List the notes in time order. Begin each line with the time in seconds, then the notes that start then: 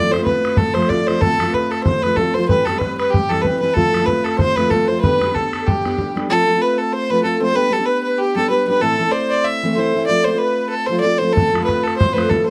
Already playing: A3 C4 F4 D5
0.11 F3 A3 C4 F4 C5, bodhran
0.18 A3 C4 F4
0.25 B4, bodhran
0.45 bodhran
0.57 A4, bodhran
0.74 F3 A3 C4 F4 C5, bodhran
0.82 bodhran
0.89 F3 A3 C4 F4 D5, bodhran
1.07 F3 A3 C4 F4 C5, bodhran
1.21 F3 A3 C4 F4 A4, bodhran
1.39 F3 A3 C4 F4, bodhran
1.47 A3 C4 F4
1.52 B4, bodhran
1.70 A4, bodhran
1.84 C5, bodhran
2.02 F3 A3 C4 F4 B4, bodhran
2.16 F3 A3 C4 F4 A4, bodhran
2.34 F3 A3 C4 C5
2.39 F4
2.48 E3 G3 C4 G4 B4, bodhran
2.65 E3 G3 C4 G4 A4, bodhran
2.73 G3 C4 G4
2.78 B4, bodhran
2.98 B4, bodhran
3.10 G4, bodhran
3.29 E3 G3 C4 G4 A4, bodhran
3.42 E3 G3 C4 B4, bodhran
3.47 G4
3.60 E3 G3 C4 G4 B4
3.74 F3 A3 C4 F4 A4, bodhran
3.93 F3 A3 C4 F4, bodhran
4.00 A3 C4 F4
4.06 B4, bodhran
4.24 A4, bodhran
4.38 C5, bodhran
4.56 F3 A3 C4 F4 B4, bodhran
4.70 F3 A3 C4 F4 A4, bodhran
4.84 B4
4.88 F3 A3 C4 F4 C5
5.01 G3 B3 D4 B4, bodhran
5.05 G4
5.21 G3 B3 D4 G4, bodhran
5.29 B3 D4 G4
5.34 A4, bodhran
5.53 bodhran
5.63 G4 A4
5.68 bodhran
5.84 G3 B3 D4 G4, bodhran
5.98 G3 B3 D4 G4, bodhran
6.15 G3 B3 D4 G4, bodhran
6.30 F3 A3 C4 F4 A4
6.47 F3 A3 C4 F4
6.55 A3 C4
6.61 B4
6.78 A4
6.93 C5
7.10 F3 A3 C4 F4 B4
7.23 F3 A3 C4 F4 A4
7.40 F3 A3 C4 F4 C5
7.55 G3 B3 D4 G4 B4
7.71 G3 B3 D4 G4 A4
7.78 B3 D4 G4
7.86 B4
8.03 B4
8.08 B4
8.18 G4
8.35 G3 B3 D4 G4 A4
8.50 G3 B3 D4 G4 B4
8.54 B4
8.68 G3 B3 D4 G4 B4
8.81 A2 E3 A3 C4 E4 A4
8.99 E3 A3 C4 E4
9.05 A3 C4 E4
9.11 C5 D5
9.29 D5
9.45 E5
9.63 E3 A3 C4 E4
9.75 E3 A3 C4 E4 C5
9.94 E3 A3 C4 E4
10.07 F3 A3 F4 D5
10.11 C4 D5
10.23 F3 A3 C5 D5
10.27 C4 F4 C5
10.32 A3 C4 F4
10.38 B4
10.43 B4
10.69 A4
10.87 F3 A3 C5
10.91 C4 F4 C5
11.00 F3 A3 D5
11.05 C4 F4 D5
11.18 F3 A3 C5
11.22 C4 F4 C5
11.33 F3 A3 C4 F4 A4
11.37 bodhran
11.53 F3 A3 C4 F4, bodhran
11.59 A3 C4 F4
11.64 B4
11.69 bodhran
11.83 A4
11.88 bodhran
11.97 C5, bodhran
12.13 F3 A3 C4 B4 C5
12.17 F4, bodhran
12.29 F3 A3 C4 F4 A4, bodhran
12.46 F3 A3 C5